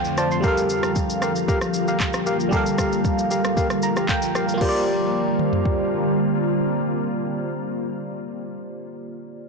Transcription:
Already playing: F2 D3 F3 A3 C4 F4 A4 C5 F5 G5
0.04 shaker
0.18 F4 C5 D5 A5, cross-stick, shaker
0.31 C6, shaker
0.40 G3 A#3 G4 A4 A#4 F5, kick, shaker
0.46 A#4 F5
0.57 shaker
0.70 shaker
0.83 cross-stick, shaker
0.96 kick, shaker
1.10 shaker
1.22 G4 A#4 F5, cross-stick, shaker
1.36 shaker
1.48 G4 A#4 F5, kick, shaker
1.61 cross-stick, shaker
1.74 shaker
1.88 G4 A#4 F5, shaker
2.00 kick, clap, shaker
2.13 cross-stick, shaker
2.26 G4 A#4 F5, shaker
2.40 shaker
2.49 G3 G4 A4 A#4, kick, shaker
2.53 A#4 F5
2.66 shaker
2.78 kick, cross-stick, shaker
2.92 shaker
3.04 kick, shaker
3.19 shaker
3.31 G4 A#4 F5, shaker
3.45 cross-stick, shaker
3.57 G4 A#4 F5, kick, shaker
3.70 cross-stick, shaker
3.83 A#5, shaker
3.96 G4 A#4 F5, cross-stick, shaker
4.09 G5, kick, clap, shaker
4.22 shaker
4.35 G4 A#4 F5, cross-stick, shaker
4.49 shaker
4.54 A#3 F4
4.61 D3 G3 A#3 C4 F4 G4 A#4 C5 D5, kick, crash
4.65 C5 D5
5.39 mid tom
5.53 floor tom
5.65 kick

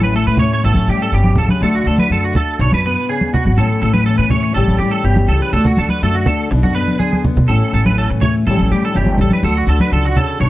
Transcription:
Already playing: A1 A2 C#4 E4
0.01 B4, high conga
0.14 A3 E4 A4
0.27 A2 B4
0.37 C#5, low conga
0.42 C#4
0.53 C#5
0.64 A1 A2 B3 A4
0.74 A1 C#4, high conga
0.88 A2 G3 G4
1.02 A4
1.12 G1 B2 G4
1.24 high conga
1.36 A1 C#3 A4, low conga
1.49 B4, high conga
1.61 D2 D3 A3 D4 F#4 A4
1.75 F#4
1.86 D2 D4 A4
1.98 B4, high conga
2.10 F#2 D3 A4
2.24 F#4
2.35 A4, muted steel-string acoustic guitar stroke, low conga
2.59 B1 B2 D4 C#5
2.71 F#2 B4, high conga
2.86 B3 B4
3.09 C#3 G#4
3.21 high conga
3.33 B2 F#4, low conga
3.45 G#1, high conga
3.58 A1 A2 C#4 A4
3.82 A1 A3 A4
3.94 B4, high conga
4.06 E3 C#4 A4
4.18 A2 B4
4.30 A3 C#5, low conga
4.43 C#5
4.54 A1 A2 E3 G3 C#4 G4 A4
4.68 A1, high conga
4.78 A2 G3 G4
4.91 A4
5.04 G1 B2 G4
5.16 high conga
5.28 C#2 C#3 A4
5.42 B4
5.53 D2 D3 F#4 A4
5.65 F#4, low conga
5.77 D2 D4 A4, high conga
5.89 B4, high conga
6.02 F#2 A3 F#4 A4
6.15 F#4
6.26 D4 A4, low conga
6.51 B1 B2 D4, muted clean electric guitar stroke
6.63 F#2 F#4, high conga
6.75 B3 B4
6.88 high conga
6.99 D3 D4 G#4, high conga
7.13 high conga
7.25 B3, low conga
7.36 B2, low conga
7.48 A1 A2 C#4 A4
7.73 A1 A3 A4
7.86 B4, high conga
7.97 E3 C#4 A4
8.10 A2, muted clean electric guitar stroke
8.21 A3 C#5, low conga
8.47 A1 A2 E3 G3 C#4 G4 A4
8.57 A1, high conga
8.71 A2 G3 G4
8.85 A4
8.94 G1 E3 C#4 G4
9.06 high conga
9.18 A1 G3 A4, low conga
9.31 B4, high conga
9.43 D2 D3 F#4 A4
9.57 F#4
9.67 D2 D4 A4
9.80 B4, high conga
9.91 C#2 D3 A4
10.05 F#4
10.17 C#3 A4, low conga
10.40 B1 B2 D4 C#5

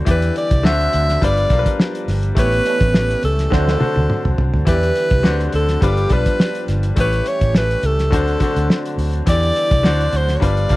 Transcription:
Already playing: D3
0.05 E2 E3 G3 B3 E4 G4 D5, kick, closed hi-hat
0.11 B4
0.22 closed hi-hat
0.36 D5, closed hi-hat
0.51 C2, kick, closed hi-hat
0.63 D2 D3 F#3 A3 C4 D4 F#4 C5 E5, snare
0.81 closed hi-hat
0.93 D2, closed hi-hat
1.09 snare, closed hi-hat
1.21 G1 F3 G3 B3 D4 F4 G4 B4 D5, kick, closed hi-hat
1.37 closed hi-hat
1.50 B1 G3 D4 F4 A#4, kick, closed hi-hat
1.59 B4
1.66 kick, closed hi-hat
1.80 snare
1.95 closed hi-hat
2.08 G1, snare, open hi-hat
2.23 closed hi-hat
2.35 A1 E3 G3 A3 B3 C#4 E4 G4 C#5, kick, closed hi-hat
2.39 B4
2.52 closed hi-hat
2.65 G3 A3 C#4, closed hi-hat
2.80 A1, kick, closed hi-hat
2.94 snare
3.10 closed hi-hat
3.23 C#2 A4, closed hi-hat
3.39 snare, closed hi-hat
3.50 D2 D3 F#3 A3 C4 D4 F#4 A4 C5, kick, snare
3.68 snare
3.79 D3 D4 F#4 C5, muted fingered electric bass stroke, high tom
3.96 D2, high tom
4.10 mid tom
4.25 C2, mid tom
4.38 C2, floor tom
4.54 D2, floor tom
4.65 E2 E3 G3 B3 E4 G4 B4 D5, kick, closed hi-hat
4.83 closed hi-hat
4.96 closed hi-hat
5.10 C2, kick, closed hi-hat
5.23 D2 D3 F#3 A3 C4 D4 F#4 C5, snare
5.40 closed hi-hat
5.52 D2 A4, closed hi-hat
5.68 snare, closed hi-hat
5.81 G1 F3 G3 B3 D4 F4 G4 B4, kick, closed hi-hat
5.97 closed hi-hat
6.10 B1 G3 D4 F4 B4, kick, closed hi-hat
6.26 kick, closed hi-hat
6.40 snare
6.55 closed hi-hat
6.68 G1, snare, closed hi-hat
6.83 closed hi-hat
6.96 A1 E3 A3 C#4 E4 G4 C#5, kick, closed hi-hat
7.00 B4
7.13 closed hi-hat
7.26 C#5, closed hi-hat
7.41 A1, kick, closed hi-hat
7.55 B4, snare
7.71 closed hi-hat
7.83 C#2 A4, closed hi-hat
7.99 snare, closed hi-hat
8.11 D2 D3 F#3 C4 D4 F#4 C5, kick, closed hi-hat
8.28 closed hi-hat
8.40 D3 D4 F#4 C5, kick, closed hi-hat
8.56 D2, closed hi-hat
8.70 snare
8.85 closed hi-hat
8.98 D2, open hi-hat
9.13 closed hi-hat
9.26 E2 E3 G3 B3 E4 G4 D5, kick, closed hi-hat
9.43 closed hi-hat
9.55 E4, closed hi-hat
9.71 C2, kick, closed hi-hat
9.83 D2 D3 F#3 A3 C4 D4 F#4 C5, snare
10.01 closed hi-hat
10.13 D2, closed hi-hat
10.17 C5
10.28 snare, closed hi-hat
10.37 G3 C#5
10.41 G1 F3 G3 B3 D4 F4 G4 B4 D5, kick, closed hi-hat
10.57 closed hi-hat
10.69 B1 G3 D4 F4 A#4, kick, closed hi-hat

